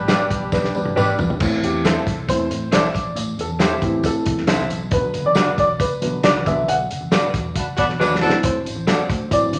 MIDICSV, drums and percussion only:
0, 0, Header, 1, 2, 480
1, 0, Start_track
1, 0, Tempo, 439560
1, 1538, Time_signature, 4, 2, 24, 8
1, 10477, End_track
2, 0, Start_track
2, 0, Title_t, "Drums"
2, 88, Note_on_c, 9, 62, 31
2, 89, Note_on_c, 9, 54, 100
2, 93, Note_on_c, 9, 38, 103
2, 97, Note_on_c, 9, 42, 83
2, 198, Note_off_c, 9, 54, 0
2, 198, Note_off_c, 9, 62, 0
2, 202, Note_off_c, 9, 38, 0
2, 206, Note_off_c, 9, 42, 0
2, 333, Note_on_c, 9, 36, 95
2, 334, Note_on_c, 9, 62, 30
2, 334, Note_on_c, 9, 63, 45
2, 337, Note_on_c, 9, 42, 66
2, 339, Note_on_c, 9, 54, 47
2, 442, Note_off_c, 9, 36, 0
2, 443, Note_off_c, 9, 62, 0
2, 443, Note_off_c, 9, 63, 0
2, 447, Note_off_c, 9, 42, 0
2, 448, Note_off_c, 9, 54, 0
2, 568, Note_on_c, 9, 54, 78
2, 571, Note_on_c, 9, 36, 95
2, 575, Note_on_c, 9, 62, 36
2, 577, Note_on_c, 9, 38, 58
2, 678, Note_off_c, 9, 54, 0
2, 680, Note_off_c, 9, 36, 0
2, 684, Note_off_c, 9, 62, 0
2, 686, Note_off_c, 9, 38, 0
2, 703, Note_on_c, 9, 38, 53
2, 811, Note_on_c, 9, 62, 30
2, 811, Note_on_c, 9, 63, 61
2, 812, Note_off_c, 9, 38, 0
2, 816, Note_on_c, 9, 54, 52
2, 921, Note_off_c, 9, 62, 0
2, 921, Note_off_c, 9, 63, 0
2, 925, Note_off_c, 9, 54, 0
2, 933, Note_on_c, 9, 48, 63
2, 1042, Note_off_c, 9, 48, 0
2, 1059, Note_on_c, 9, 47, 79
2, 1060, Note_on_c, 9, 63, 65
2, 1062, Note_on_c, 9, 54, 87
2, 1168, Note_off_c, 9, 47, 0
2, 1169, Note_off_c, 9, 63, 0
2, 1171, Note_off_c, 9, 54, 0
2, 1295, Note_on_c, 9, 62, 28
2, 1295, Note_on_c, 9, 63, 57
2, 1295, Note_on_c, 9, 64, 58
2, 1297, Note_on_c, 9, 43, 105
2, 1304, Note_on_c, 9, 54, 60
2, 1404, Note_off_c, 9, 62, 0
2, 1404, Note_off_c, 9, 63, 0
2, 1404, Note_off_c, 9, 64, 0
2, 1406, Note_off_c, 9, 43, 0
2, 1413, Note_off_c, 9, 54, 0
2, 1421, Note_on_c, 9, 43, 79
2, 1530, Note_off_c, 9, 43, 0
2, 1530, Note_on_c, 9, 49, 97
2, 1536, Note_on_c, 9, 36, 119
2, 1544, Note_on_c, 9, 62, 30
2, 1544, Note_on_c, 9, 64, 70
2, 1550, Note_on_c, 9, 54, 80
2, 1639, Note_off_c, 9, 49, 0
2, 1645, Note_off_c, 9, 36, 0
2, 1654, Note_off_c, 9, 62, 0
2, 1654, Note_off_c, 9, 64, 0
2, 1660, Note_off_c, 9, 54, 0
2, 1785, Note_on_c, 9, 42, 67
2, 1788, Note_on_c, 9, 54, 65
2, 1888, Note_on_c, 9, 63, 68
2, 1894, Note_off_c, 9, 42, 0
2, 1897, Note_off_c, 9, 54, 0
2, 1997, Note_off_c, 9, 63, 0
2, 2017, Note_on_c, 9, 54, 92
2, 2022, Note_on_c, 9, 38, 105
2, 2027, Note_on_c, 9, 42, 78
2, 2126, Note_off_c, 9, 54, 0
2, 2132, Note_off_c, 9, 38, 0
2, 2136, Note_off_c, 9, 42, 0
2, 2258, Note_on_c, 9, 36, 96
2, 2264, Note_on_c, 9, 42, 65
2, 2266, Note_on_c, 9, 54, 50
2, 2270, Note_on_c, 9, 63, 47
2, 2270, Note_on_c, 9, 64, 64
2, 2367, Note_off_c, 9, 36, 0
2, 2374, Note_off_c, 9, 42, 0
2, 2375, Note_off_c, 9, 54, 0
2, 2379, Note_off_c, 9, 63, 0
2, 2379, Note_off_c, 9, 64, 0
2, 2496, Note_on_c, 9, 36, 88
2, 2497, Note_on_c, 9, 54, 75
2, 2504, Note_on_c, 9, 42, 86
2, 2606, Note_off_c, 9, 36, 0
2, 2606, Note_off_c, 9, 54, 0
2, 2613, Note_off_c, 9, 42, 0
2, 2737, Note_on_c, 9, 62, 28
2, 2737, Note_on_c, 9, 63, 56
2, 2741, Note_on_c, 9, 42, 79
2, 2741, Note_on_c, 9, 54, 51
2, 2846, Note_off_c, 9, 62, 0
2, 2846, Note_off_c, 9, 63, 0
2, 2850, Note_off_c, 9, 42, 0
2, 2850, Note_off_c, 9, 54, 0
2, 2973, Note_on_c, 9, 42, 97
2, 2974, Note_on_c, 9, 63, 62
2, 2978, Note_on_c, 9, 38, 107
2, 2982, Note_on_c, 9, 54, 98
2, 3083, Note_off_c, 9, 42, 0
2, 3083, Note_off_c, 9, 63, 0
2, 3087, Note_off_c, 9, 38, 0
2, 3092, Note_off_c, 9, 54, 0
2, 3110, Note_on_c, 9, 38, 37
2, 3211, Note_on_c, 9, 62, 24
2, 3211, Note_on_c, 9, 63, 57
2, 3211, Note_on_c, 9, 64, 54
2, 3217, Note_on_c, 9, 36, 81
2, 3219, Note_off_c, 9, 38, 0
2, 3223, Note_on_c, 9, 54, 56
2, 3228, Note_on_c, 9, 42, 70
2, 3321, Note_off_c, 9, 62, 0
2, 3321, Note_off_c, 9, 63, 0
2, 3321, Note_off_c, 9, 64, 0
2, 3327, Note_off_c, 9, 36, 0
2, 3332, Note_off_c, 9, 54, 0
2, 3337, Note_off_c, 9, 42, 0
2, 3456, Note_on_c, 9, 42, 98
2, 3461, Note_on_c, 9, 64, 66
2, 3464, Note_on_c, 9, 54, 86
2, 3565, Note_off_c, 9, 42, 0
2, 3570, Note_off_c, 9, 64, 0
2, 3573, Note_off_c, 9, 54, 0
2, 3702, Note_on_c, 9, 54, 64
2, 3703, Note_on_c, 9, 42, 69
2, 3804, Note_on_c, 9, 63, 72
2, 3811, Note_off_c, 9, 54, 0
2, 3812, Note_off_c, 9, 42, 0
2, 3913, Note_off_c, 9, 63, 0
2, 3926, Note_on_c, 9, 54, 94
2, 3930, Note_on_c, 9, 38, 105
2, 3934, Note_on_c, 9, 42, 81
2, 4035, Note_off_c, 9, 54, 0
2, 4040, Note_off_c, 9, 38, 0
2, 4044, Note_off_c, 9, 42, 0
2, 4170, Note_on_c, 9, 36, 96
2, 4170, Note_on_c, 9, 54, 49
2, 4175, Note_on_c, 9, 42, 63
2, 4185, Note_on_c, 9, 62, 29
2, 4185, Note_on_c, 9, 63, 42
2, 4185, Note_on_c, 9, 64, 67
2, 4280, Note_off_c, 9, 36, 0
2, 4280, Note_off_c, 9, 54, 0
2, 4285, Note_off_c, 9, 42, 0
2, 4294, Note_off_c, 9, 62, 0
2, 4294, Note_off_c, 9, 63, 0
2, 4294, Note_off_c, 9, 64, 0
2, 4405, Note_on_c, 9, 54, 81
2, 4410, Note_on_c, 9, 36, 84
2, 4418, Note_on_c, 9, 42, 88
2, 4421, Note_on_c, 9, 62, 38
2, 4514, Note_off_c, 9, 54, 0
2, 4519, Note_off_c, 9, 36, 0
2, 4527, Note_off_c, 9, 42, 0
2, 4530, Note_off_c, 9, 62, 0
2, 4647, Note_on_c, 9, 42, 83
2, 4653, Note_on_c, 9, 54, 49
2, 4657, Note_on_c, 9, 36, 100
2, 4660, Note_on_c, 9, 62, 29
2, 4660, Note_on_c, 9, 63, 62
2, 4756, Note_off_c, 9, 42, 0
2, 4762, Note_off_c, 9, 54, 0
2, 4766, Note_off_c, 9, 36, 0
2, 4769, Note_off_c, 9, 62, 0
2, 4769, Note_off_c, 9, 63, 0
2, 4777, Note_on_c, 9, 38, 39
2, 4885, Note_on_c, 9, 42, 97
2, 4886, Note_off_c, 9, 38, 0
2, 4890, Note_on_c, 9, 38, 108
2, 4899, Note_on_c, 9, 54, 86
2, 4903, Note_on_c, 9, 63, 68
2, 4994, Note_off_c, 9, 42, 0
2, 4999, Note_off_c, 9, 38, 0
2, 5009, Note_off_c, 9, 54, 0
2, 5012, Note_off_c, 9, 63, 0
2, 5014, Note_on_c, 9, 38, 36
2, 5123, Note_off_c, 9, 38, 0
2, 5133, Note_on_c, 9, 42, 68
2, 5136, Note_on_c, 9, 54, 60
2, 5142, Note_on_c, 9, 62, 27
2, 5142, Note_on_c, 9, 63, 52
2, 5142, Note_on_c, 9, 64, 53
2, 5242, Note_off_c, 9, 42, 0
2, 5246, Note_off_c, 9, 54, 0
2, 5251, Note_off_c, 9, 62, 0
2, 5251, Note_off_c, 9, 63, 0
2, 5251, Note_off_c, 9, 64, 0
2, 5362, Note_on_c, 9, 42, 96
2, 5368, Note_on_c, 9, 36, 122
2, 5377, Note_on_c, 9, 54, 85
2, 5378, Note_on_c, 9, 62, 30
2, 5378, Note_on_c, 9, 64, 69
2, 5472, Note_off_c, 9, 42, 0
2, 5478, Note_off_c, 9, 36, 0
2, 5486, Note_off_c, 9, 54, 0
2, 5488, Note_off_c, 9, 62, 0
2, 5488, Note_off_c, 9, 64, 0
2, 5610, Note_on_c, 9, 42, 73
2, 5617, Note_on_c, 9, 54, 67
2, 5625, Note_on_c, 9, 62, 33
2, 5719, Note_off_c, 9, 42, 0
2, 5726, Note_off_c, 9, 54, 0
2, 5729, Note_on_c, 9, 63, 68
2, 5734, Note_off_c, 9, 62, 0
2, 5838, Note_off_c, 9, 63, 0
2, 5839, Note_on_c, 9, 54, 109
2, 5846, Note_on_c, 9, 38, 100
2, 5851, Note_on_c, 9, 42, 76
2, 5948, Note_off_c, 9, 54, 0
2, 5956, Note_off_c, 9, 38, 0
2, 5960, Note_off_c, 9, 42, 0
2, 6093, Note_on_c, 9, 36, 90
2, 6095, Note_on_c, 9, 54, 53
2, 6097, Note_on_c, 9, 42, 65
2, 6110, Note_on_c, 9, 62, 29
2, 6110, Note_on_c, 9, 63, 49
2, 6110, Note_on_c, 9, 64, 60
2, 6202, Note_off_c, 9, 36, 0
2, 6204, Note_off_c, 9, 54, 0
2, 6206, Note_off_c, 9, 42, 0
2, 6219, Note_off_c, 9, 62, 0
2, 6219, Note_off_c, 9, 63, 0
2, 6219, Note_off_c, 9, 64, 0
2, 6331, Note_on_c, 9, 36, 92
2, 6331, Note_on_c, 9, 54, 81
2, 6337, Note_on_c, 9, 42, 97
2, 6345, Note_on_c, 9, 62, 35
2, 6440, Note_off_c, 9, 36, 0
2, 6440, Note_off_c, 9, 54, 0
2, 6446, Note_off_c, 9, 42, 0
2, 6454, Note_off_c, 9, 62, 0
2, 6574, Note_on_c, 9, 42, 84
2, 6576, Note_on_c, 9, 54, 53
2, 6579, Note_on_c, 9, 62, 29
2, 6579, Note_on_c, 9, 63, 58
2, 6683, Note_off_c, 9, 42, 0
2, 6685, Note_off_c, 9, 54, 0
2, 6688, Note_off_c, 9, 62, 0
2, 6688, Note_off_c, 9, 63, 0
2, 6809, Note_on_c, 9, 42, 99
2, 6814, Note_on_c, 9, 38, 113
2, 6821, Note_on_c, 9, 54, 90
2, 6834, Note_on_c, 9, 62, 31
2, 6834, Note_on_c, 9, 63, 68
2, 6918, Note_off_c, 9, 42, 0
2, 6923, Note_off_c, 9, 38, 0
2, 6930, Note_off_c, 9, 54, 0
2, 6943, Note_off_c, 9, 62, 0
2, 6943, Note_off_c, 9, 63, 0
2, 6943, Note_on_c, 9, 38, 34
2, 7052, Note_off_c, 9, 38, 0
2, 7057, Note_on_c, 9, 36, 93
2, 7057, Note_on_c, 9, 54, 60
2, 7062, Note_on_c, 9, 42, 66
2, 7066, Note_on_c, 9, 62, 27
2, 7066, Note_on_c, 9, 63, 57
2, 7066, Note_on_c, 9, 64, 52
2, 7166, Note_off_c, 9, 54, 0
2, 7167, Note_off_c, 9, 36, 0
2, 7171, Note_off_c, 9, 42, 0
2, 7176, Note_off_c, 9, 62, 0
2, 7176, Note_off_c, 9, 63, 0
2, 7176, Note_off_c, 9, 64, 0
2, 7300, Note_on_c, 9, 42, 99
2, 7304, Note_on_c, 9, 54, 81
2, 7311, Note_on_c, 9, 62, 31
2, 7311, Note_on_c, 9, 64, 67
2, 7409, Note_off_c, 9, 42, 0
2, 7413, Note_off_c, 9, 54, 0
2, 7420, Note_off_c, 9, 62, 0
2, 7420, Note_off_c, 9, 64, 0
2, 7542, Note_on_c, 9, 42, 76
2, 7543, Note_on_c, 9, 54, 64
2, 7651, Note_off_c, 9, 42, 0
2, 7653, Note_off_c, 9, 54, 0
2, 7653, Note_on_c, 9, 63, 71
2, 7762, Note_off_c, 9, 63, 0
2, 7771, Note_on_c, 9, 38, 107
2, 7772, Note_on_c, 9, 54, 101
2, 7775, Note_on_c, 9, 42, 78
2, 7788, Note_on_c, 9, 62, 31
2, 7881, Note_off_c, 9, 38, 0
2, 7881, Note_off_c, 9, 54, 0
2, 7885, Note_off_c, 9, 42, 0
2, 7897, Note_off_c, 9, 62, 0
2, 8015, Note_on_c, 9, 36, 98
2, 8018, Note_on_c, 9, 42, 68
2, 8026, Note_on_c, 9, 54, 49
2, 8033, Note_on_c, 9, 62, 30
2, 8033, Note_on_c, 9, 63, 47
2, 8033, Note_on_c, 9, 64, 68
2, 8124, Note_off_c, 9, 36, 0
2, 8127, Note_off_c, 9, 42, 0
2, 8135, Note_off_c, 9, 54, 0
2, 8142, Note_off_c, 9, 62, 0
2, 8142, Note_off_c, 9, 63, 0
2, 8142, Note_off_c, 9, 64, 0
2, 8251, Note_on_c, 9, 36, 95
2, 8252, Note_on_c, 9, 42, 90
2, 8252, Note_on_c, 9, 54, 75
2, 8267, Note_on_c, 9, 62, 38
2, 8360, Note_off_c, 9, 36, 0
2, 8361, Note_off_c, 9, 42, 0
2, 8362, Note_off_c, 9, 54, 0
2, 8376, Note_off_c, 9, 62, 0
2, 8489, Note_on_c, 9, 42, 80
2, 8499, Note_on_c, 9, 36, 89
2, 8502, Note_on_c, 9, 62, 31
2, 8502, Note_on_c, 9, 63, 62
2, 8503, Note_on_c, 9, 54, 56
2, 8598, Note_off_c, 9, 42, 0
2, 8609, Note_off_c, 9, 36, 0
2, 8611, Note_off_c, 9, 62, 0
2, 8611, Note_off_c, 9, 63, 0
2, 8612, Note_off_c, 9, 54, 0
2, 8617, Note_on_c, 9, 38, 36
2, 8726, Note_off_c, 9, 38, 0
2, 8742, Note_on_c, 9, 38, 59
2, 8748, Note_on_c, 9, 62, 29
2, 8748, Note_on_c, 9, 63, 69
2, 8749, Note_on_c, 9, 54, 87
2, 8851, Note_off_c, 9, 38, 0
2, 8858, Note_off_c, 9, 54, 0
2, 8858, Note_off_c, 9, 62, 0
2, 8858, Note_off_c, 9, 63, 0
2, 8902, Note_on_c, 9, 38, 66
2, 8981, Note_on_c, 9, 63, 54
2, 8981, Note_on_c, 9, 64, 58
2, 8985, Note_on_c, 9, 54, 62
2, 9011, Note_off_c, 9, 38, 0
2, 9059, Note_on_c, 9, 38, 98
2, 9090, Note_off_c, 9, 63, 0
2, 9090, Note_off_c, 9, 64, 0
2, 9094, Note_off_c, 9, 54, 0
2, 9168, Note_off_c, 9, 38, 0
2, 9208, Note_on_c, 9, 42, 99
2, 9214, Note_on_c, 9, 36, 122
2, 9225, Note_on_c, 9, 54, 89
2, 9230, Note_on_c, 9, 64, 66
2, 9317, Note_off_c, 9, 42, 0
2, 9323, Note_off_c, 9, 36, 0
2, 9334, Note_off_c, 9, 54, 0
2, 9339, Note_off_c, 9, 64, 0
2, 9460, Note_on_c, 9, 42, 67
2, 9460, Note_on_c, 9, 54, 65
2, 9460, Note_on_c, 9, 62, 35
2, 9559, Note_on_c, 9, 63, 75
2, 9569, Note_off_c, 9, 54, 0
2, 9570, Note_off_c, 9, 42, 0
2, 9570, Note_off_c, 9, 62, 0
2, 9669, Note_off_c, 9, 63, 0
2, 9690, Note_on_c, 9, 38, 109
2, 9690, Note_on_c, 9, 54, 101
2, 9694, Note_on_c, 9, 42, 83
2, 9704, Note_on_c, 9, 62, 28
2, 9799, Note_off_c, 9, 38, 0
2, 9799, Note_off_c, 9, 54, 0
2, 9803, Note_off_c, 9, 42, 0
2, 9813, Note_off_c, 9, 62, 0
2, 9932, Note_on_c, 9, 36, 98
2, 9938, Note_on_c, 9, 42, 70
2, 9942, Note_on_c, 9, 63, 45
2, 9942, Note_on_c, 9, 64, 67
2, 9944, Note_on_c, 9, 54, 47
2, 10041, Note_off_c, 9, 36, 0
2, 10047, Note_off_c, 9, 42, 0
2, 10051, Note_off_c, 9, 63, 0
2, 10051, Note_off_c, 9, 64, 0
2, 10053, Note_off_c, 9, 54, 0
2, 10169, Note_on_c, 9, 36, 87
2, 10173, Note_on_c, 9, 42, 89
2, 10173, Note_on_c, 9, 54, 78
2, 10173, Note_on_c, 9, 62, 35
2, 10279, Note_off_c, 9, 36, 0
2, 10282, Note_off_c, 9, 42, 0
2, 10282, Note_off_c, 9, 62, 0
2, 10283, Note_off_c, 9, 54, 0
2, 10408, Note_on_c, 9, 42, 78
2, 10415, Note_on_c, 9, 62, 27
2, 10415, Note_on_c, 9, 63, 60
2, 10420, Note_on_c, 9, 54, 53
2, 10477, Note_off_c, 9, 42, 0
2, 10477, Note_off_c, 9, 54, 0
2, 10477, Note_off_c, 9, 62, 0
2, 10477, Note_off_c, 9, 63, 0
2, 10477, End_track
0, 0, End_of_file